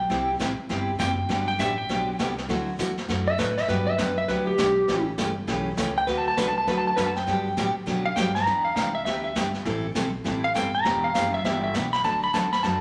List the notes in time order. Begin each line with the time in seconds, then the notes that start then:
Already playing: G5
0.09 C2 C3 G3 C4 E4 G4, brush sweep, kick, snare
0.39 A1 C3 G3 C4 E4 G4, kick, snare, hi-hat pedal
0.58 muted upright bass stroke
0.69 G1 C3 G3 C4 E4 G4, brush sweep, kick, snare
0.99 F#1 C3 G3 C4 E4 G4 G5, kick, snare, hi-hat pedal
1.29 G1 D3 F#3 B3 D4 G4, brush sweep, kick, snare
1.48 G5
1.59 A1 D3 F#3 B3 D4 G4 E5, kick, snare, hi-hat pedal
1.78 G5
1.89 B1 D3 F#3 B3 D4 G4, brush sweep, kick, snare
2.19 C2 D3 F#3 B3 D4 G4, kick, snare, hi-hat pedal
2.38 snare
2.49 D2 D3 F#3 A3 E4 F#4, brush sweep, kick, snare
2.79 E2 D3 F#3 A3 E4 F#4, kick, snare, hi-hat pedal
2.97 snare
3.08 F#2 D3 F#3 A3 E4 F#4, brush sweep, kick, snare
3.28 E5
3.38 A2 D3 F#3 A3 E4 F#4 B4, kick, snare, hi-hat pedal
3.57 E5, snare
3.68 G2 D3 F#3 B3 D4 G4 B4, brush sweep, kick, snare
3.87 E5
3.98 F#2 D3 F#3 B3 D4 G4 B4, kick, snare, hi-hat pedal
4.18 E5
4.28 D2 D3 F#3 B3 D4 G4 B4, brush sweep, kick, snare
4.47 G4
4.58 B1 D3 F#3 B3 D4 G4, kick, snare, hi-hat pedal
4.88 A1 C#3 E3 A3 C#4 G4, brush sweep, kick, snare
5.18 G1 C#3 E3 A3 C#4 G4, kick, snare, hi-hat pedal
5.47 B1 C#3 E3 A3 C#4 G4, brush sweep, kick, snare
5.77 C#2 C#3 E3 A3 C#4 G4, kick, snare, hi-hat pedal
5.98 G5
6.07 D2 D3 F#3 A3 D4 F#4 B4, brush sweep, kick, snare
6.18 A5
6.28 A5
6.37 C2 D3 F#3 A3 D4 F#4 B4, kick, snare, hi-hat pedal
6.48 A5
6.58 A5
6.67 D2 D3 F#3 A3 D4 F#4 B4, brush sweep, kick, snare
6.78 A5
6.87 A5
6.96 F#2 D3 F#3 A3 D4 F#4 B4, kick, snare, hi-hat pedal
7.06 A5
7.16 G5, snare
7.27 G2 D3 F#3 B3 D4 G4, brush sweep, kick, snare
7.57 A2 D3 F#3 B3 D4 G4, kick, snare, hi-hat pedal
7.86 B2 D3 F#3 B3 D4 G4, brush sweep, kick, snare
8.05 F5
8.16 G2 D3 F#3 B3 D4 G4 G5, kick, snare, hi-hat pedal
8.35 A#5, snare
8.46 E2 E3 B3 D4 G4, brush sweep, kick, snare
8.65 F5
8.76 C2 E3 B3 D4 G4 F5, kick, snare, hi-hat pedal
8.95 E5
9.05 D2 E3 B3 D4 G4 E5, brush sweep, kick, snare
9.24 E5
9.35 G1 E3 B3 D4 G4, kick, snare, hi-hat pedal
9.54 snare
9.65 A1 E3 G3 C4 E4 A4, brush sweep, kick, snare
9.95 B1 E3 G3 C4 E4 A4, kick, snare, hi-hat pedal
10.24 A1 E3 G3 C4 E4 A4, brush sweep, kick, snare
10.44 F5
10.54 G1 E3 G3 C4 E4 A4 G5, kick, snare, hi-hat pedal
10.75 A#5
10.85 E1 E3 B3 D4 G4, brush sweep, kick, snare
11.04 F5
11.14 F#1 E3 B3 D4 G4 F5, kick, snare, hi-hat pedal
11.34 E5
11.44 G1 E3 B3 D4 G4 E5, brush sweep, kick, snare
11.64 E5
11.74 B1 E3 B3 D4 G4, kick, snare, hi-hat pedal
11.93 B5, snare
12.04 D2 D3 F#3 A3 D4 F#4 A5, brush sweep, kick, snare
12.24 B5
12.33 E2 D3 F#3 A3 D4 F#4 A5, kick, snare, hi-hat pedal
12.53 B5, snare
12.63 F#2 D3 F#3 A3 D4 F#4 A5, brush sweep, kick, snare